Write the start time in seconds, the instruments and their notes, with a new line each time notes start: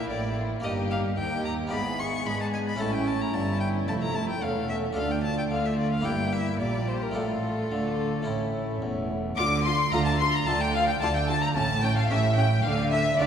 Already playing: harpsichord A#3 D4 A#4, viola section A#3, violin section D4 E4
0.10 double bass section A1, harpsichord A2, cello section A2, violin section G4, violin D5
0.37 violin section F4
0.60 harpsichord A#3 G4 A#4, violin section D#4, violin D#5
0.64 double bass section G1, cello section G2, harpsichord G2, viola section A#3, violin section G4
0.91 violin F5
1.18 harpsichord D#2, cello section D#2, double bass section D#2, violin section D#4 G4, violin G5
1.45 violin A#5
1.67 harpsichord B3 F4 D5
1.71 double bass section G#1, harpsichord G#2, cello section G#2, viola section B3, violin section E4 G#4, violin B5
1.99 violin C#6
2.25 double bass section G#2, harpsichord G#3, cello section G#3, violin section D4, violin B5
2.41 violin A5
2.53 violin G#5
2.68 violin B5
2.76 harpsichord C#4 E4 A4, violin section C#4
2.80 double bass section A1, harpsichord A2, cello section A2, viola section C#4, violin section E4, violin A5
2.94 violin G5
3.07 violin A5
3.21 violin A#5
3.33 double bass section G1, harpsichord G2, cello section G2, viola section C#4, violin section E4, violin A5
3.60 violin G5
3.88 double bass section F1, harpsichord F2, cello section F2, viola section A3, violin A5
4.02 violin A#5
4.15 violin A5
4.29 violin G5
4.42 double bass section E1, harpsichord E2, cello section E2, viola section A3, violin section C#4 A4, violin F5
4.69 violin E5
4.92 double bass section D2, harpsichord D4 F4 A4
4.97 harpsichord D2, cello section D2, viola section A3, violin section D4 F4, violin F5
5.11 violin G5
5.24 violin A5
5.38 violin G5
5.51 double bass section D2, harpsichord D3, cello section D3, violin section F4, violin F5
5.66 violin E5
5.79 violin D5
5.93 violin F5
6.01 harpsichord A#3 E4 G4
6.05 double bass section G1, harpsichord G2, cello section G2, viola section A#3, violin section E4, violin G5
6.32 violin E5
6.60 double bass section A#1, harpsichord A#2, cello section A#2, viola section G3, violin section E4 G4, violin D5
6.88 violin C5
7.02 violin A#4
7.11 double bass section A1, harpsichord A3 D4 F4, violin section F4, violin A4
7.16 cello section A2, harpsichord A2, viola section A3
7.71 double bass section D2, cello section D3, harpsichord D3
8.22 double bass section A1, harpsichord A3 C#4 E4, viola section A3, violin section E4
8.27 cello section A2, harpsichord A2, violin section C#4
8.82 double bass section E1, cello section E2, harpsichord E2
9.36 double bass section D2, cello section D3, harpsichord D3, viola section F4, violin D6, violin section D6
9.64 viola section F4, violin section C6, violin C6
9.92 double bass section D2, harpsichord D3 A3 D4 F4, cello section D3, viola section F4, violin section A#5, violin A#5
10.05 violin A5, violin section A5
10.19 viola section F4, violin C6, violin section C6
10.32 violin A#5, violin section A#5
10.46 double bass section D2, cello section D3, harpsichord D3 A3, viola section F4, violin section A5, violin A5
10.61 violin G5, violin section G5
10.74 viola section F4, violin section F5, violin F5
10.87 violin G5, violin section G5
11.00 double bass section D2, cello section D3, harpsichord D3 A3 D4 F4, viola section F4, violin A5, violin section A5
11.15 violin G5, violin section G5
11.28 viola section F4, violin section A5, violin A5
11.42 violin A#5, violin section A#5
11.55 double bass section A1, cello section A2, harpsichord A2, viola section C#4, violin section A5, violin A5
11.82 viola section C#4, violin section G5, violin G5
11.96 violin section F5, violin F5
12.09 double bass section A1, harpsichord A2 C#4 G4, cello section A2, viola section C#4, violin section E5, violin E5
12.35 viola section C#4, violin section G5, violin G5
12.63 double bass section D2, harpsichord D3, cello section D3, viola section D4, violin section F5, violin F5
12.90 viola section D4, violin section E5, violin E5
13.18 double bass section D2, harpsichord D3 D4 F4, cello section D3, viola section D4, violin section D5, violin D5